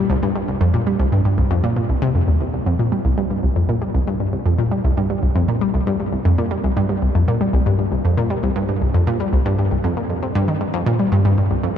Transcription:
0.10 C2
0.23 G2
0.36 G2
0.48 C2
0.61 F2
0.74 A#2
0.87 G3
0.99 C2
1.12 G2
1.25 G2
1.38 C2
1.51 F2
1.64 A#2
1.76 A#2
1.89 C2
2.02 C3
2.15 F2
2.28 D#2
2.41 C2
2.53 C2
2.66 F2
2.79 A#2
2.92 G3
3.05 C2
3.18 G2
3.30 G2
3.43 C2
3.56 F2
3.69 A#2
3.82 G3
3.94 C2
4.07 G2
4.20 G2
4.33 C2
4.46 F2
4.58 A#2
4.71 G3
4.84 C2
4.97 G2
5.10 G2
5.23 C2
5.36 F2
5.48 A#2
5.61 G3
5.74 C2
5.87 G2
6.00 G2
6.13 C2
6.25 F2
6.38 A#2
6.51 G3
6.64 C2
6.77 G2
6.89 G2
7.02 C2
7.15 F2
7.28 A#2
7.41 G3
7.53 C2
7.66 G2
7.79 G2
7.92 C2
8.05 F2
8.17 A#2
8.30 G3
8.43 C2
8.56 G2
8.69 G2
8.82 C2
8.94 F2
9.07 A#2
9.20 G3
9.33 C2
9.46 G2
9.59 G2
9.71 C2
9.84 F2
9.97 A#2
10.10 F2
10.22 C3
10.35 G2
10.48 D#3
10.61 G2
10.74 F2
10.86 A#2
10.99 G3
11.12 G2
11.25 G2
11.38 G2
11.51 C2
11.63 F2

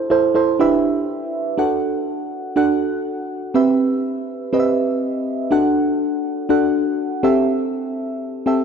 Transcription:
Already playing: E4 A4 C5
0.10 E4 A4 C5
0.35 E4 A4 C5
0.59 D4 E4 G4 B4 E5
1.58 D4 F#4 A4 F#5
2.56 D4 F#4 A4 F#5
3.54 C4 G4 B4 E5
4.53 C4 G4 B4 D#5
4.60 E5
5.51 D4 F#4 A4 F#5
6.49 D4 F#4 A4 F#5
7.23 C4 G4 A4 E5
8.46 C4 G4 A4 E5

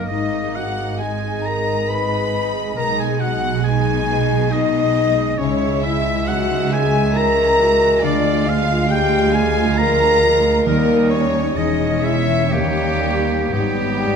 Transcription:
Already playing: F#2 A#3 D#4 A#4 D#5
0.08 G#1 G#2 G#3 D#4 D#5
0.12 D#5
0.55 G#3 F#4 F#5
0.99 G#3 D#4 G#4 G#5
1.42 D#5 A#5
1.46 A#4
1.89 G#3 D#4 B4 B5
2.34 G#3
2.77 B1 B2 G#3 D#4 A#4 A#5
2.98 G#4 G#5
3.18 G#3 F#4 F#5
3.61 D#4 G#4 G#5
3.66 G#3 D#4 G#5
4.08 D#5
4.51 G#3 D#4 D#5
4.96 G#3
5.38 C#2 C#3 G#3 C#4 E4 C#5
5.42 E5
5.82 G#3 E4 E5
6.26 F#3 D#4 E4 F#4 F#5
6.71 G#4 A#4 G#5
7.14 E3 C#4 E4 A#4 A#5
7.59 G#3 F#4
8.03 D2 D3 F3 D4 F4 D5 F5
8.46 G#3 F4 F5
8.88 G3 F4 G4 G5
8.93 F4
9.32 G#4 A#4 G#5
9.75 F3 F4 A#4 A#5
10.22 F3 G#3
10.65 D#2 D#3 G3 D#4 A#4 D#5
10.69 A#3
11.10 C#4 D#4 A#4 C#5
11.56 E1 E2 E3 G#3 C#4 D#4 C#5 D#5
12.03 C#4 E4 C#5 E5
12.50 D#2 D#3 G3 A#3 D#4 G4
12.55 G4
13.00 D#4 C#5
13.51 G#1 G#2 G3 B3 D#4 G4
13.61 G#2
13.88 G#2
14.05 G#2 B3

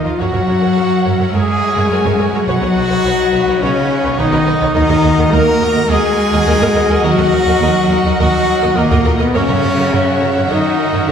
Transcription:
Already playing: D#4 F4 A#4 D#5 F5
0.04 D#2 F3 F4 A#4 D#5 F5
0.18 F#2 F#3 E4 F#4 A#4 C#5 E5 F#5
0.33 F#2 A#4 C#5
0.48 F#2 A#4 C#5
0.61 F#2 A#4 C#5
0.76 F#2 A#4 C#5
1.05 F#2 A#4 C#5
1.19 F#2 A#4 C#5
1.32 F#2 G#3 G#4 A#4 C#5 G#5
1.76 F#2 A#4 C#5
1.90 F#2 A#4 C#5
2.04 F#2 A#4 C#5
2.19 F#2 A#4 C#5
2.33 F#2 A#4 C#5
2.46 B1 F#3 D#4 F#4 B4 C#5 D#5 F#5
2.61 B1 B4 C#5
2.76 B1 B4 C#5
2.90 B1 B4 C#5
3.04 B1 B4 C#5
3.33 B1 B4 C#5
3.47 B1 B4 C#5
3.60 B1 C#3 C#4 B4 C#5
4.04 B1 B4 C#5
4.18 B1 D#3 D#4 B4 C#5 D#5
4.32 B1 B4 C#5
4.46 B1 B4 C#5
4.61 B1 B4 C#5
4.74 D#2 D#3 D#4 F#4 A#4 D#5 F#5
4.89 D#2 A#4 D#5
5.03 D#2 A#4 D#5
5.17 D#2 A#4 D#5
5.31 D#2 A#3 A#4 D#5 A#5
5.60 D#2 A#4 D#5
5.75 D#2 A#4 D#5
5.89 D#2 G#3 G#4 A#4 D#5 G#5
6.32 D#2 A#4 D#5
6.47 D#2 A#4 D#5
6.61 D#2 A#4 D#5
6.75 D#2 A#4 D#5
6.89 D#2 A#4 D#5
7.03 D#2 F#3 F#4 A#4 D#5 F#5
7.18 D#2 A#4 D#5
7.32 D#2 A#4 D#5
7.46 D#2 A#4 D#5
7.61 D#2 A#4 D#5
7.90 D#2 A#4 D#5
8.05 D#2 A#4 D#5
8.19 D#2 F#3 F#4 A#4 D#5 F#5
8.62 D#2 A#4 D#5
8.75 D#2 A#2 A#3 A#4 D#5
8.91 D#2 A#4 D#5
9.04 D#2 A#4 D#5
9.18 D#2 B2 B3 A#4 B4 D#5
9.34 F#2 C#3 C#4 F#4 A#4 C#5 E5 F#5
9.48 F#2 A#4 C#5
9.63 F#2 A#4 C#5
9.77 F#2 A#4 C#5
9.91 F#2 A#4 C#5
10.20 F#2 A#4 C#5
10.35 F#2 A#4 C#5
10.49 F#2 D#3 D#4 A#4 C#5 D#5
10.93 F#2 A#4 C#5
11.07 F#2 C#3 C#4 A#4 C#5

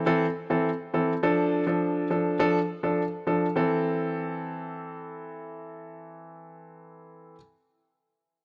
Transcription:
0.06 E3 C4 A4
0.50 E3 C4 A4
0.94 E3 C4 A4
1.23 F3 D4 A4
1.66 F3 D4 A4
2.10 F3 D4 A4
2.39 F3 D4 A4
2.83 F3 D4 A4
3.27 F3 D4 A4
3.56 E3 C4 A4

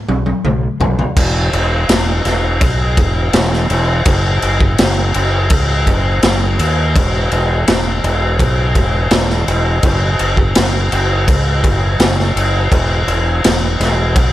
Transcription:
0.09 B1, high tom
0.26 high tom
0.45 B1, mid tom
0.80 B1, floor tom
0.99 floor tom
1.17 E1, kick, crash
1.53 E1, crash
1.89 E1, snare, crash
2.25 E1, snare, crash
2.61 B1, kick, crash
2.97 E1, kick, crash
3.33 E1, snare, crash
3.53 snare
3.70 E1, crash
4.05 F#1, kick, crash
4.42 F#1, crash
4.60 kick
4.78 F#1, snare, crash
5.14 F#1, crash
5.50 C#2, kick, crash
5.87 F#1, kick, crash
6.23 F#1, snare, crash
6.59 D#2, crash
6.96 E1, kick, crash
7.31 E1, crash
7.68 E1, snare, crash
8.04 E1, crash
8.39 B1, kick, crash
8.75 E1, kick, crash
9.11 E1, snare, crash
9.30 snare
9.48 E1, crash
9.83 F#1, kick, crash
10.19 F#1, crash
10.37 kick
10.55 F#1, snare, crash
10.92 F#1, crash
11.28 C#2, kick, crash
11.64 F#1, kick, crash
11.99 F#1, snare, crash
12.20 snare
12.36 F#1, crash
12.72 E1, kick, crash
13.07 E1, crash
13.44 E1, snare, crash
13.80 E1, snare, crash
14.16 B1, kick, crash

